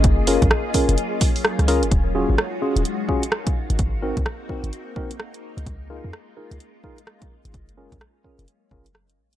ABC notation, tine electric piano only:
X:1
M:4/4
L:1/16
Q:"Swing 16ths" 1/4=128
K:Gblyd
V:1 name="Tine electric piano"
z2 [DFAB]2 z2 [DFAB]2 z6 [DFAB] z | z2 [DFGA]2 z2 [DFGA]2 z2 [DFGA] z4 z | z2 [CEGB]2 z2 [CEGB]2 z2 [CEGB] z4 z | z2 [EFAB]2 z2 [EFAB]2 z2 [EFAB] z4 z |
z2 [DFAB]2 z2 [DFAB]2 z2 [DFAB] z4 z |]